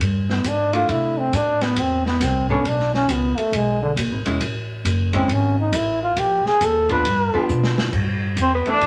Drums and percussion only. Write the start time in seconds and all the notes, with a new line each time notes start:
0.01 kick, ride
0.30 snare
0.44 kick, hi-hat pedal, ride
0.73 ride
0.89 kick, ride
1.33 kick, hi-hat pedal, ride
1.61 snare, ride
1.76 kick, ride
2.06 snare
2.21 kick, snare, hi-hat pedal, ride
2.49 kick
2.65 kick, ride
2.80 snare
2.94 snare
3.09 kick, hi-hat pedal, ride
3.38 ride
3.53 kick, ride
3.97 kick, hi-hat pedal, ride
4.26 ride
4.41 kick, ride
4.85 kick, hi-hat pedal, ride
5.13 kick, ride
5.29 kick, ride
5.73 kick, hi-hat pedal, ride
6.17 kick, ride
6.46 snare
6.61 kick, hi-hat pedal, ride
6.89 kick, ride
7.05 kick, ride
7.49 hi-hat pedal
7.63 snare
7.78 snare
7.93 kick, crash
8.37 kick, hi-hat pedal, ride
8.66 ride
8.81 kick, ride